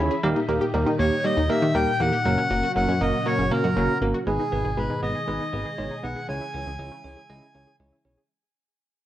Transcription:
Already playing: C#3 E3 G#3 E4 G#4
0.00 C#4 E4 G#4 C#5 B5
0.11 G#4
0.23 D#2 A#2 D#3 G3 A#3 D#4 G4 A#4
0.36 D#4
0.49 D#2 A#3 D#4 G4 A#4
0.61 G4
0.74 D#2 G3 A#3 D#4 G4 A#4
0.87 D#3 D#4
0.99 D#2 A#3 D#4 G4 C#5
1.24 G3 A#3 D#4 G4 C#5 D#5
1.37 D#2 D#4
1.50 A#3 D#4 G4 A#4 E5
1.62 D#3 G4
1.75 D#2 G3 A#3 D#4 G4 A#4 G5
2.00 E2 A#3 D#4 G4 A#4 F#5
2.13 G4
2.25 F#1 C#3 F#3 A#3 C#4 F#4 A#4
2.38 C#4
2.50 F#1 A#3 C#4 F#4 A#4
2.63 F#4
2.76 F#1 F#3 A#3 C#4 F#4 A#4 F#5
2.88 F#2 C#4
3.01 F#1 A#3 C#4 F#4 A#4 D#5
3.26 F#3 A#3 C#4 F#4 A#4 C#5
3.39 F#1 C#4
3.51 A#3 C#4 F#4 A#4
3.64 F#2 F#4
3.76 F#1 F#3 A#3 C#4 F#4 A#4
4.02 G#1 A#3 C#4 F#4 A#4
4.14 F#4
4.27 G#1 B2 D#3 G#3 B3 D#4 G#4 B4
4.40 D#4
4.52 G#1 B3 D#4 G#4 B4
4.65 G#1 G#4
4.77 G#1 G#3 B3 D#4 G#4 B4
4.90 G#2 D#4
5.03 G#1 B3 D#4 G#4 B4 D#5
5.15 G#4
5.28 G#1 G#3 B3 D#4 G#4 B4
5.40 D#4
5.53 G#1 B3 D#4 G#4 B4
5.66 G#4
5.78 G#1 G#3 B3 D#4 G#4 C#5
5.91 D#4
6.03 B1 B3 D#4 G#4 B4 F#5
6.16 G#4
6.29 C#2 C#3 E3 G#3 C#4 E4 G#4 C#5 G#5
6.41 E4
6.54 C#2 C#4 E4 G#4 C#5
6.66 C#2 G#4
6.79 C#2 G#3 C#4 E4 G#4 C#5
6.92 C#3 E4
7.04 C#2 C#4 E4 G#4 C#5
7.17 G#4
7.29 C#2 G#3 C#4 E4 G#4 D#5
7.42 E4
7.54 C#2 C#4 E4 G#4 C#5
7.67 G#4
7.80 C#2 G#3 C#4 E4 G#4 C#5
7.92 E4
8.05 B1 C#4 E4 G#4 C#5
8.18 G#4

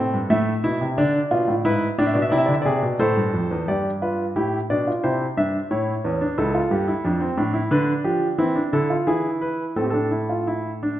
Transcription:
Already playing: A2 C4 A4
0.14 G2
0.30 A2 A3 E5
0.64 B2 E4
0.81 C3
0.98 D3 D4 D5
1.31 B2 F4
1.48 A2
1.65 G#2 E4 B4
1.98 A2 D4 D5
2.07 E5
2.14 B2 D5
2.22 E5
2.30 C3 E4 D5
2.38 E5
2.46 D3 D5
2.54 E5
2.62 C3 G#4 D5
2.83 B2
2.99 A2 A4 C5
3.17 G2
3.34 F2
3.51 E2
3.68 G2 G4 D5
4.02 F4 B4
4.36 A2 E4 G4
4.70 B2 D4 D5
4.87 F4
5.04 C3 E4 C5
5.37 G2 D4 E5
5.71 A2 E4 C#5
6.05 E2 C#4
6.21 D4
6.38 C#2 E4 A4
6.55 F4
6.71 G2 G4
6.88 E4
7.05 F2 D4
7.21 C4
7.37 A2 D4
7.54 E4
7.71 D3 D4 B4
8.04 F3 G4
8.38 E3 C4 E4
8.56 D4
8.73 D3 E4 A4
8.90 F4
9.07 E3 E4 G#4
9.41 B4
9.76 A2 C4 A4
9.84 G4
9.90 D4 A4
10.11 E4
10.30 F4
10.47 E4
10.83 D4

